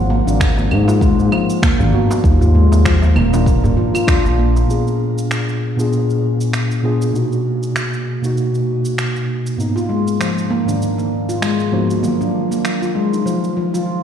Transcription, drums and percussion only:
0.28 shaker medium
0.40 finger snap medium
0.40 kick medium
0.40 shaker medium
0.57 darbuka ka soft
0.57 shaker soft
0.71 claves medium
0.88 darbuka tek medium
0.88 shaker medium
1.01 kick medium
1.01 darbuka ka soft
1.01 shaker medium
1.19 shaker soft
1.32 darbuka ka medium
1.32 claves medium
1.50 shaker medium
1.63 finger snap loud
1.63 kick medium
1.63 shaker medium
1.80 darbuka dum medium
1.80 shaker soft
1.93 darbuka dum medium
2.10 darbuka ka soft
2.10 darbuka tek medium
2.10 shaker medium
2.24 kick loud
2.24 shaker medium
2.41 darbuka dum medium
2.41 shaker soft
2.72 darbuka ka soft
2.72 darbuka tek medium
2.72 shaker medium
2.85 finger snap loud
2.85 kick medium
2.85 shaker medium
3.02 darbuka ka medium
3.02 darbuka tek medium
3.02 shaker soft
3.16 claves medium
3.34 darbuka tek medium
3.34 shaker medium
3.46 kick loud
3.46 shaker medium
3.64 darbuka dum medium
3.64 shaker soft
3.95 darbuka ka soft
3.95 claves medium
3.95 shaker medium
4.08 finger snap loud
4.08 kick loud
4.08 shaker soft
4.25 darbuka ka medium
4.25 shaker soft
4.56 darbuka ka medium
4.56 shaker medium
4.70 shaker medium
4.87 shaker soft
5.18 shaker medium
5.31 finger snap medium
5.31 shaker soft
5.49 shaker soft
5.79 shaker medium
5.93 shaker soft
6.10 shaker soft
6.41 shaker medium
6.53 finger snap medium
6.53 shaker soft
6.71 shaker soft
7.02 shaker medium
7.15 shaker medium
7.32 shaker soft
7.63 shaker medium
7.76 finger snap medium
7.76 shaker soft
7.94 shaker soft
8.24 shaker medium
8.37 shaker soft
8.55 shaker soft
8.85 shaker medium
8.98 finger snap medium
8.98 shaker medium
9.16 shaker soft
9.46 shaker medium
9.60 shaker soft
9.77 shaker soft
10.07 shaker medium
10.21 finger snap medium
10.21 shaker medium
10.38 shaker soft
10.69 shaker medium
10.82 shaker medium
10.99 shaker soft
11.29 shaker medium
11.42 finger snap medium
11.42 shaker medium
11.60 shaker soft
11.90 shaker medium
12.04 shaker medium
12.21 shaker soft
12.52 shaker medium
12.65 finger snap medium
12.65 shaker medium
12.83 shaker soft
13.13 shaker medium
13.27 shaker medium
13.44 shaker soft
13.75 shaker medium

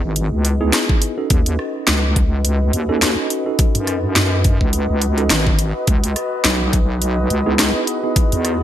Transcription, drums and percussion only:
0.16 closed hi-hat medium
0.45 closed hi-hat medium
0.73 snare loud
0.73 closed hi-hat medium
0.89 kick loud
1.02 closed hi-hat medium
1.30 kick loud
1.30 closed hi-hat medium
1.46 closed hi-hat medium
1.59 cross-stick medium
1.87 snare loud
1.87 closed hi-hat medium
2.16 kick loud
2.16 closed hi-hat medium
2.45 closed hi-hat medium
2.73 closed hi-hat medium
3.02 snare loud
3.02 closed hi-hat medium
3.30 closed hi-hat medium
3.59 kick loud
3.59 closed hi-hat medium
3.75 closed hi-hat medium
3.87 cross-stick soft
3.87 closed hi-hat medium
4.16 snare loud
4.16 closed hi-hat medium
4.44 kick loud
4.44 closed hi-hat medium
4.61 kick medium
4.73 closed hi-hat medium
5.02 closed hi-hat medium
5.18 closed hi-hat soft
5.30 snare loud
5.30 closed hi-hat medium
5.47 kick loud
5.59 closed hi-hat medium
5.87 kick loud
5.87 closed hi-hat medium
6.04 closed hi-hat medium
6.16 cross-stick soft
6.16 closed hi-hat medium
6.44 snare loud
6.44 closed hi-hat medium
6.73 kick loud
6.73 closed hi-hat medium
7.02 closed hi-hat medium
7.30 closed hi-hat medium
7.59 snare loud
7.59 closed hi-hat medium
7.87 closed hi-hat medium
8.16 kick loud
8.16 closed hi-hat medium
8.32 closed hi-hat medium
8.45 cross-stick medium
8.45 closed hi-hat medium

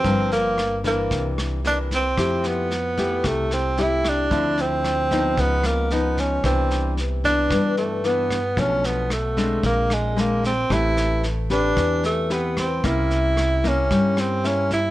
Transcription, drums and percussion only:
0.04 kick medium
0.04 snare soft
0.31 snare soft
0.58 cross-stick medium
0.58 snare soft
0.84 kick soft
0.84 snare soft
1.11 kick medium
1.11 snare soft
1.38 cross-stick medium
1.38 snare soft
1.65 snare soft
1.91 kick soft
1.91 snare soft
2.17 kick medium
2.17 cross-stick medium
2.17 snare soft
2.44 snare soft
2.71 snare soft
2.97 kick soft
2.97 snare soft
3.24 kick medium
3.24 cross-stick medium
3.24 snare soft
3.51 snare soft
3.77 snare soft
4.04 kick soft
4.04 cross-stick medium
4.04 snare soft
4.31 kick medium
4.31 snare soft
4.58 snare soft
4.84 cross-stick medium
4.84 snare soft
5.11 kick soft
5.11 snare soft
5.37 kick medium
5.37 snare soft
5.63 cross-stick medium
5.63 snare soft
5.90 snare soft
6.17 kick soft
6.17 snare soft
6.44 kick medium
6.44 cross-stick medium
6.44 snare soft
6.71 snare soft
6.97 snare soft
7.24 kick soft
7.24 snare soft
7.50 kick medium
7.50 cross-stick medium
7.50 snare soft
7.77 snare soft
8.04 snare soft
8.30 kick soft
8.30 cross-stick medium
8.30 snare soft
8.57 kick medium
8.57 snare soft
8.84 snare soft
9.10 cross-stick medium
9.10 snare soft
9.37 kick soft
9.37 snare soft
9.63 kick medium
9.63 snare soft
9.90 cross-stick medium
9.90 snare soft
10.18 snare soft
10.44 kick soft
10.44 snare soft
10.70 kick medium
10.70 cross-stick medium
10.70 snare soft
10.97 snare soft
11.23 snare soft
11.50 kick soft
11.50 snare soft
11.77 kick medium
11.77 cross-stick medium
11.77 snare soft
12.03 snare soft
12.30 snare soft
12.57 kick soft
12.57 cross-stick medium
12.57 snare soft
12.84 kick medium
12.84 snare soft
13.11 snare soft
13.37 cross-stick medium
13.37 snare soft
13.64 kick soft
13.64 snare soft
13.91 kick medium
13.91 snare soft
14.17 cross-stick medium
14.17 snare soft
14.44 snare soft
14.71 kick soft
14.71 snare soft

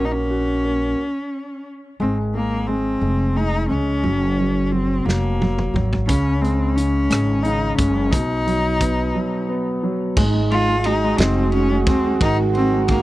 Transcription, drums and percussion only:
5.09 snare medium
5.42 high tom medium
5.59 mid tom medium
5.76 mid tom medium
5.93 floor tom medium
6.09 kick loud
6.09 closed hi-hat medium
6.44 closed hi-hat soft
6.77 closed hi-hat medium
7.10 cross-stick loud
7.10 closed hi-hat medium
7.45 closed hi-hat soft
7.78 kick medium
7.78 closed hi-hat medium
8.13 kick loud
8.13 closed hi-hat medium
8.47 closed hi-hat soft
8.81 kick medium
8.81 closed hi-hat medium
10.17 kick loud
10.17 crash loud
10.51 ride soft
10.84 ride medium
11.18 snare loud
11.18 ride medium
11.52 ride soft
11.86 kick loud
11.86 ride medium
12.21 kick loud
12.21 ride medium
12.55 ride soft
12.88 kick medium
12.88 ride medium

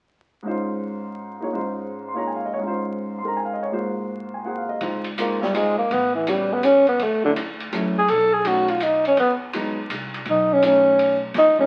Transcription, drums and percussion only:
4.81 kick soft
4.81 ride soft
5.04 ride soft
5.18 hi-hat pedal medium
5.18 ride medium
5.42 snare soft
5.54 hi-hat pedal soft
5.54 ride medium
5.91 kick soft
5.91 ride soft
6.27 hi-hat pedal medium
6.27 ride medium
6.63 hi-hat pedal medium
6.63 ride medium
6.87 ride soft
6.99 kick soft
6.99 ride soft
7.36 hi-hat pedal soft
7.36 ride medium
7.60 ride soft
7.73 hi-hat pedal medium
7.73 ride medium
8.08 kick soft
8.08 ride medium
8.45 hi-hat pedal soft
8.45 ride medium
8.68 ride soft
8.80 hi-hat pedal medium
8.80 ride medium
9.05 ride soft
9.17 kick soft
9.17 ride medium
9.53 hi-hat pedal medium
9.53 ride medium
9.90 hi-hat pedal soft
9.90 ride medium
10.14 ride soft
10.25 kick soft
10.25 ride soft
10.62 hi-hat pedal medium
10.62 ride medium
10.99 ride medium
11.34 kick soft
11.34 snare soft
11.34 ride medium
11.59 kick soft

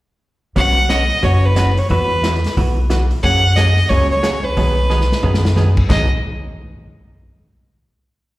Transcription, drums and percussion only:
0.56 kick soft
0.56 open hi-hat soft
0.90 snare medium
0.90 closed hi-hat medium
1.10 open hi-hat soft
1.23 kick soft
1.23 open hi-hat soft
1.56 snare medium
1.56 closed hi-hat soft
1.77 open hi-hat soft
1.90 kick soft
1.90 open hi-hat soft
2.24 snare medium
2.24 closed hi-hat medium
2.35 snare soft
2.44 snare soft
2.44 open hi-hat soft
2.57 kick soft
2.57 open hi-hat soft
2.90 snare medium
2.90 closed hi-hat soft
3.11 open hi-hat soft
3.24 kick soft
3.24 open hi-hat soft
3.57 snare medium
3.57 closed hi-hat medium
3.78 open hi-hat soft
3.90 kick soft
3.90 open hi-hat soft
4.24 snare medium
4.24 closed hi-hat medium
4.57 kick soft
4.57 open hi-hat soft
4.90 snare soft
5.01 snare soft
5.12 snare medium
5.23 floor tom medium
5.34 snare medium
5.45 snare medium
5.56 snare soft
5.77 kick medium
5.77 crash medium
5.90 kick medium
5.90 snare medium
5.90 crash medium

